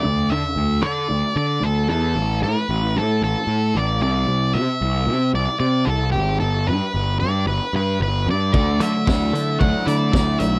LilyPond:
<<
  \new Staff \with { instrumentName = "Lead electric guitar" } { \time 4/4 \key d \major \tempo 4 = 113 d''8 e''4 d''4 d''8 a'8 a'8~ | a'8 b'4 a'8 a'4 d''8 d''8~ | d''8 e''4. d''8 d''8 a'8 g'8 | a'8 b'4 d''8 b'8 b'8 b'8 d''8~ |
d''8 e''4. fis''8 d''4 e''8 | }
  \new Staff \with { instrumentName = "Overdriven electric guitar" } { \time 4/4 \key d \major r1 | r1 | r1 | r1 |
<a d' fis'>8 <a d'>8 <a d' fis'>8 <a d'>8 <a d' fis'>8 <a d'>8 <a d'>8 <a d'>8 | }
  \new Staff \with { instrumentName = "Clean electric guitar" } { \clef bass \time 4/4 \key d \major r1 | r1 | r1 | r1 |
d8 fis8 e'8 a8 fis8 e'8 a8 fis8 | }
  \new Staff \with { instrumentName = "Picked electric bass" } { \clef bass \time 4/4 \key d \major d,8 d16 r16 d,8 d8 d,16 r16 d8 d,8 e,8 | a,,8 a,16 r16 a,,8 a,8 a,,16 r16 a,8 a,,8 c,8 | c,8 c16 r16 c,8 c8 c,16 r16 c8 c,8 gis,,8 | g,,8 g,16 r16 g,,8 g,8 g,,16 r16 g,8 g,,8 g,8 |
d,8 d16 r16 d,8 d8 d,16 r16 d8 d,8 b,,8 | }
  \new DrumStaff \with { instrumentName = "Drums" } \drummode { \time 4/4 r4 r4 r4 r4 | r4 r4 r4 r4 | r4 r4 r4 r4 | r4 r4 r4 r4 |
bd8 hh8 <bd sn>8 hh8 bd8 hh8 <bd sn>8 hh8 | }
>>